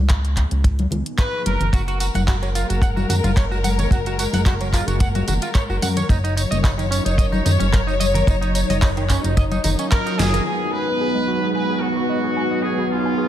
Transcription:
Already playing: C#2
0.09 kick, clap, closed hi-hat
0.25 closed hi-hat
0.37 kick, clap, closed hi-hat
0.51 C#2, closed hi-hat
0.64 kick, closed hi-hat
0.79 closed hi-hat, high conga
0.91 C#2, closed hi-hat, low conga
1.06 closed hi-hat
1.18 B4, kick, clap, closed hi-hat
1.46 F#1 A#4, closed hi-hat, high conga
1.60 F#1, closed hi-hat, low conga
1.73 F#1 G#3 F#4 A#4, kick, closed hi-hat, tambourine
1.88 F#4, closed hi-hat, tambourine
2.00 F#4, open hi-hat, tambourine
2.14 F#1 F#5, closed hi-hat, tambourine, high conga
2.28 F#4, kick, clap, closed hi-hat, tambourine
2.43 F#3, closed hi-hat, tambourine
2.55 F4, open hi-hat, tambourine
2.69 F#1 F#4, closed hi-hat, tambourine
2.82 F#5, kick, closed hi-hat, tambourine
2.96 F#4, tambourine, high conga
3.09 F#2 F#4, open hi-hat, tambourine, low conga
3.24 F#1 F4, closed hi-hat, tambourine, high conga
3.37 C#5, kick, clap, closed hi-hat, tambourine
3.51 F#4, tambourine
3.64 F#5, open hi-hat, tambourine, high conga
3.79 C#5, closed hi-hat, tambourine, low conga
3.91 F#1 F#4, kick, closed hi-hat, tambourine
4.06 F#4, closed hi-hat, tambourine
4.19 F#4, open hi-hat, tambourine
4.33 F#1 F#5, open hi-hat, tambourine, high conga
4.46 F#4, kick, clap, closed hi-hat, tambourine
4.61 F#3, closed hi-hat, tambourine
4.73 F4, kick, clap, open hi-hat, tambourine
4.87 F#1 F#4, closed hi-hat, tambourine
5.00 F#5, kick, closed hi-hat, tambourine
5.15 F#4, closed hi-hat, tambourine, high conga
5.28 F#1 F#4, open hi-hat, tambourine, low conga
5.42 F4, closed hi-hat, tambourine
5.55 C#5, kick, clap, closed hi-hat, tambourine
5.69 F#1 F#4, tambourine
5.82 F#2 F#5, open hi-hat, tambourine, high conga
5.97 C#5, closed hi-hat, tambourine, low conga
6.09 F#1 F#3 D#4 C#5, kick, closed hi-hat, tambourine
6.24 D#4, closed hi-hat, tambourine
6.37 D#4, open hi-hat, tambourine
6.51 F#1 D#5, closed hi-hat, tambourine, high conga
6.64 D#4, kick, clap, closed hi-hat, tambourine
6.78 D#3, closed hi-hat, tambourine
6.91 C#4, open hi-hat, tambourine
7.05 F#1 D#4, closed hi-hat, tambourine
7.18 D#5, kick, closed hi-hat, tambourine
7.32 D#4, tambourine, high conga
7.45 F#2 D#4, open hi-hat, tambourine, low conga
7.60 F#1 C#4, closed hi-hat, tambourine, high conga
7.73 A#4, kick, clap, closed hi-hat, tambourine
7.87 D#4, tambourine
8.00 D#5, open hi-hat, tambourine, high conga
8.14 A#4, closed hi-hat, tambourine, low conga
8.27 F#1 D#4, kick, closed hi-hat, tambourine
8.41 D#4, closed hi-hat, tambourine
8.55 D#4, open hi-hat, tambourine
8.69 F#1 D#5, open hi-hat, tambourine, high conga
8.82 D#4, kick, clap, closed hi-hat, tambourine
8.97 D#3, closed hi-hat, tambourine
9.09 C#4, kick, clap, open hi-hat, tambourine
9.24 F#1 D#4, closed hi-hat, tambourine
9.37 D#5, kick, closed hi-hat, tambourine
9.52 D#4, closed hi-hat, tambourine, high conga
9.64 F#1 F#3 C#4 D#4 F4 A#4, open hi-hat, tambourine, low conga
9.79 C#4, closed hi-hat, tambourine
9.91 A#4, kick, clap, closed hi-hat, tambourine
10.06 D#4, closed hi-hat, tambourine
10.18 F#1 G#4 D#5, snare, open hi-hat, tambourine, high conga
10.33 A#4, closed hi-hat, tambourine, low conga
10.45 F#3 G#3 B3 D#4 G#4 B4
10.61 G#4
10.72 G#4 B4
10.88 G#5
11.01 G#4
11.15 G#3
11.28 F#4
11.42 G#4
11.54 B4 G#5
11.70 G#4
11.81 F#4 G#4
11.97 F#4
12.09 D#5
12.24 G#4
12.37 G#5
12.51 D#5
12.63 G#4
12.78 G#4
12.90 F4 G#4
13.06 G#5
13.18 G#4

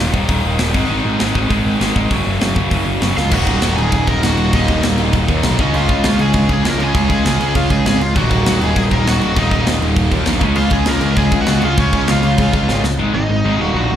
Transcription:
Already playing: D#2
0.00 A#2 D#3
0.13 D#1 D#2 A#2 D#3, kick
0.28 D#1 D#2 A#2 D#3, kick, open hi-hat
0.45 D#1
0.59 D#1 D#2 A#2 D#3, snare, open hi-hat
0.74 G#1 G#2 D#3 G#3, kick, crash
0.88 G#1 G#2 D#3 G#3
1.05 G#1
1.19 G#1 G#2 D#3 G#3, snare, open hi-hat
1.35 G#1 G#2 D#3 G#3, kick
1.49 G#1 G#2 D#3 G#3, kick, open hi-hat
1.65 G#1
1.80 G#1 G#2 D#3 G#3, snare, open hi-hat
1.95 G#1 G#2 D#3 G#3, kick
2.10 F#1 F#2 C#3 F#3, kick, open hi-hat
2.27 F#1
2.40 F#1 F#2 C#3 F#3, snare, open hi-hat
2.55 F#1 F#2 C#3 F#3, kick
2.71 F#1 F#2 C#3 F#3, kick, open hi-hat
2.86 F#1
3.01 F#1 F#2 C#3 F#3, snare, open hi-hat
3.15 C#2 F#2 C#3 F#3 F4 F5, snare
3.29 D#1 D#2 A#2 D#3 F#3 A#3 D#4 F#5, kick, crash
3.34 F#4
3.46 D#1, kick, crash
3.62 D#1, snare, crash
3.76 D#1 G#4 G#5, crash
3.91 D#1 G#4 G#5, kick, crash
4.06 D#1 D#2 A#2 D#3 F#3 A#3 D#4 A#5, kick, crash
4.11 A#4
4.21 D#1 D#2 A#2 D#3 F#3 A#3 D#4 F#5, snare, crash
4.26 F#4
4.37 D#1, crash
4.52 D#1 D#2 A#2 D#3 F#3 A#3 D#4 D#5, kick, crash
4.68 D#1, kick, crash
4.83 D#1, snare, crash
4.98 D#1, crash
5.13 D#1, kick, crash
5.28 D#2 A#2 D#3 F#3 A#3 D#4, kick, crash
5.43 B1 D#2 A#2 D#3 F#3 A#3 D#4, snare, crash
5.58 C#2 C#3 G#3 C#4 D#4 F4 D#5, kick, crash
5.62 G#4
5.74 C#2 F4 F5, crash
5.89 C#2, kick, crash
6.04 C#2, snare, crash
6.19 C#2 G#4 G#5, crash
6.33 C#2 C#3 G#3 C#4 F4 G#4, kick, crash
6.48 C#2 C#3 G#3 C#4 F4 G#4, kick, crash
6.53 G#4 G#5
6.64 C#2 A#4, snare, crash
6.69 A#5
6.78 C#2 C#3 G#3 C#4 F4 G#4, crash
6.83 G#4 G#5
6.95 C#2, kick, crash
7.10 C#2 G#4 G#5, kick, crash
7.25 C#2, snare, crash
7.40 C#2, crash
7.54 C#2 C#3 G#3 C#4 F4 G#4 F5, kick, crash
7.70 C#2 C#3 G#3 C#4 F4 G#4 G#5, kick, crash
7.85 G#1 G#4 G#5, snare, crash
8.00 C#2 F4 F5, crash
8.14 D#1 D#2 A#2 D#3 F#3 A#3 D#4 F#4 F#5, kick, crash
8.18 D#3
8.31 D#1, kick, crash
8.46 D#1, snare, crash
8.61 D#1 G#4 G#5, crash
8.76 D#1 G#4 G#5, kick, crash
8.90 D#1 D#2 A#2 D#3 F#3 A#3 D#4 A#4 A#5, kick, crash
9.05 D#1 D#2 A#2 D#3 F#3 A#3 D#4 F#4, snare, crash
9.09 F#5
9.21 D#1, crash
9.35 D#1 D#2 A#2 D#3 F#3 A#3 D#4 D#5, kick, crash
9.51 D#1, kick, crash
9.67 D#1, snare, crash
9.81 D#1, crash
9.96 D#1, kick, crash
10.10 D#2 A#2 D#3 F#3 A#3 D#4, kick, crash
10.26 A#1 D#2 A#2 D#3 F#3 A#3, snare, crash
10.30 D#4
10.40 C#2 C#3 G#3 C#4 F4 G#4, kick, crash
10.55 C#2 F4 F5, crash
10.70 C#2 G#4 G#5, kick, crash
10.85 C#2 A#4 A#5, snare, crash
11.01 C#2, crash
11.16 C#2 C#3 G#3 C#4 F4 G#4 G#5, kick, crash
11.31 C#2 C#3 G#3 C#4 F4 G#4, kick, crash
11.41 F#4 F#5
11.46 C#2, snare, crash
11.61 C#2 C#3 G#3 C#4 F4 G#4, crash
11.65 F5
11.77 C#2 C#4 C#5, kick, crash
11.93 C#2, kick, crash
12.08 C#2 F4 F5, snare, crash
12.23 C#2, crash
12.38 C#2 C#3 G#3 C#4 F4 G#4, kick, crash
12.53 C#2 C#3 G#3 C#4 F4 G#4, kick, crash
12.69 G#1, snare
12.84 C#2, snare
12.99 G#1 G#2 D#3 G#3
13.14 G#1 G#2 D#3 D#4 D#5
13.29 G#1 G#2 D#3
13.44 G#1 G#2 D#3 G#3
13.59 D#1 D#2 A#2 D#3 F#4 F#5
13.74 A#1 D#2 A#2 D#3
13.89 D#1 D#2 A#2

